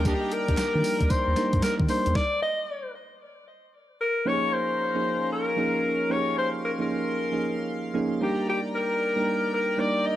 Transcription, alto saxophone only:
0.07 0.34 G4 loud
0.33 1.12 A#4 loud
1.10 1.63 C5 loud
1.63 1.75 A#4 loud
1.89 2.17 C5 loud
2.15 2.42 D5 loud
2.42 2.91 D#5 loud
4.01 4.29 A#4 loud
4.28 4.55 C#5 loud
4.53 5.32 C5 loud
5.32 6.13 A#4 loud
6.11 6.37 C#5 loud
6.38 6.49 C5 loud
6.65 6.72 A#4 medium
6.82 7.82 A#4 loud
8.23 8.46 G4 medium
8.49 8.61 G4 medium
8.75 9.49 A#4 loud
9.54 9.81 A#4 loud
9.80 10.08 D5 loud
10.06 10.16 D#5 loud

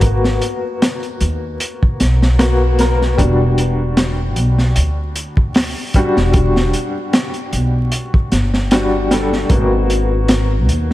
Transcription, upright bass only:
0.00 0.39 G#1 medium
1.21 1.56 D#2 medium
2.01 3.15 B1 medium
3.19 4.37 E1 loud
4.37 4.72 B1 medium
4.77 5.73 D2 medium
6.17 6.71 E1 medium
7.53 7.88 B1 medium
8.32 9.47 G1 medium
9.50 10.69 G#1 loud
10.69 10.93 D#2 medium

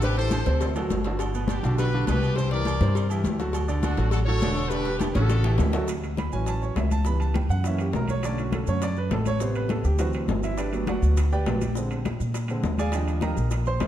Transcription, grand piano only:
0.03 0.15 C3 medium
0.03 0.15 C4 medium
0.03 0.15 C5 medium
0.17 0.41 E3 medium
0.17 0.41 E4 medium
0.17 0.41 G4 medium
0.46 0.70 C3 medium
0.46 0.71 C4 medium
0.46 0.71 C5 medium
0.77 1.00 F#3 medium
0.77 1.00 F#4 medium
0.77 1.01 A4 medium
1.07 1.30 D3 medium
1.07 1.30 D4 medium
1.07 1.30 F#4 medium
1.34 1.58 B2 medium
1.34 1.59 B3 medium
1.34 1.59 B4 medium
1.63 1.87 D3 medium
1.63 1.88 D4 medium
1.63 1.88 F#4 medium
1.94 2.06 D3 medium
1.94 2.06 D4 medium
1.94 2.06 F#4 medium
2.09 2.32 B2 medium
2.09 2.33 B3 medium
2.09 2.33 B4 medium
2.37 2.49 C3 medium
2.37 2.49 C4 medium
2.37 2.49 C5 medium
2.52 2.76 E3 medium
2.52 2.76 E4 medium
2.52 2.76 G4 medium
2.81 3.05 C3 medium
2.81 3.06 C4 medium
2.81 3.06 C5 medium
3.11 3.35 E3 medium
3.11 3.35 E4 medium
3.11 3.35 G4 medium
3.39 3.64 F#3 medium
3.39 3.64 F#4 medium
3.39 3.64 A4 medium
3.68 3.93 D3 medium
3.68 3.93 D4 medium
3.68 3.93 D5 medium
3.98 4.22 F#3 medium
3.98 4.22 F#4 medium
3.98 4.22 A4 medium
4.28 4.40 F#3 medium
4.28 4.40 F#4 medium
4.28 4.40 A4 medium
4.43 4.66 D3 medium
4.43 4.67 D4 medium
4.43 4.67 D5 medium
4.72 4.84 D3 medium
4.72 4.84 D4 medium
4.72 4.85 D5 medium
4.87 5.11 G3 medium
4.87 5.11 G4 medium
4.87 5.11 B4 medium
5.15 5.39 C#3 medium
5.15 5.40 C#4 loud
5.15 5.40 C#5 medium
5.45 5.69 E3 medium
5.45 5.69 E4 medium
5.45 5.69 G4 medium
5.74 5.86 F#3 medium
5.74 5.87 F#4 medium
5.74 5.87 A4 medium
6.19 6.33 B5 medium
6.33 6.75 E3 medium
6.33 6.75 F#3 soft
6.33 6.75 C#4 medium
6.33 6.47 G#5 medium
6.48 6.62 A5 medium
6.62 6.77 C#5 medium
6.77 6.91 E5 medium
6.92 7.06 A5 loud
7.06 7.48 E3 soft
7.06 7.48 G3 soft
7.06 7.48 B3 medium
7.06 7.20 B5 medium
7.20 7.35 A5 medium
7.35 7.50 G5 medium
7.50 7.65 F#5 medium
7.66 7.85 E3 medium
7.66 7.85 A#3 soft
7.66 7.86 C#4 medium
7.66 7.80 E5 medium
7.81 7.95 G4 medium
7.95 8.09 A#4 medium
8.10 8.24 C#5 medium
8.24 8.67 D3 soft
8.24 8.67 A3 soft
8.24 8.67 C#4 medium
8.24 8.39 D5 medium
8.40 8.53 F#4 medium
8.55 8.68 A4 medium
8.68 8.81 D3 soft
8.68 8.81 A3 soft
8.68 8.82 C#4 soft
8.68 8.82 C#5 medium
8.83 8.97 D5 medium
8.98 9.12 B4 medium
9.13 9.27 A4 medium
9.27 9.41 C#5 loud
9.41 9.83 C3 soft
9.41 9.83 G3 soft
9.41 9.83 B3 medium
9.41 9.56 C5 medium
9.56 9.70 B4 medium
9.71 9.85 A4 medium
9.85 9.99 G4 medium
9.99 10.55 E3 soft
9.99 10.56 F#3 medium
9.99 10.56 C4 medium
9.99 10.09 F#4 medium
10.43 10.58 E4 medium
10.43 10.58 E5 medium
10.58 10.86 D4 medium
10.58 10.85 G4 medium
10.58 10.86 B4 medium
10.58 10.85 D5 medium
10.73 11.15 F#3 soft
10.73 11.15 A3 soft
10.73 11.15 B3 medium
10.88 11.29 F#4 medium
10.88 11.29 B4 soft
10.88 11.29 D5 soft
10.88 11.29 F#5 medium
11.32 11.73 G4 medium
11.32 11.73 B4 medium
11.32 11.73 D5 medium
11.32 11.73 G5 medium
11.46 11.60 F#3 medium
11.46 11.60 A3 soft
11.46 11.60 B3 medium
11.77 11.96 D3 soft
11.77 11.96 G#3 soft
11.77 11.97 C4 medium
12.50 12.63 D3 medium
12.50 12.63 G#3 soft
12.50 12.63 C4 medium
12.79 12.93 G#4 medium
12.79 12.93 D5 medium
12.79 12.93 F5 medium
12.79 12.93 G#5 medium
12.94 13.35 F3 medium
12.94 13.35 G3 soft
12.94 13.36 D4 medium
12.94 13.21 G4 medium
12.94 13.21 D5 medium
12.94 13.21 D#5 medium
12.94 13.21 G5 medium
13.22 13.64 A#4 medium
13.22 13.63 D#5 medium
13.22 13.64 G5 medium
13.22 13.63 A#5 medium
13.67 13.87 C5 medium
13.67 13.87 C6 loud

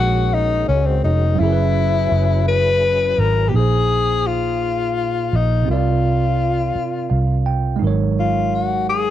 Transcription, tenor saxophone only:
0.00 0.36 F#4 loud
0.34 0.68 D#4 loud
0.68 0.88 C#4 medium
0.86 1.04 C4 medium
1.04 1.41 D#4 medium
1.40 2.46 E4 loud
2.48 3.21 B4 loud
3.19 3.50 A#4 medium
3.49 3.57 G4 medium
3.56 4.29 G#4 medium
4.27 5.38 F4 medium
5.36 5.70 D#4 medium
5.71 7.44 F4 medium
8.20 8.56 F4 medium
8.55 8.89 F#4 medium
8.89 9.10 G#4 loud

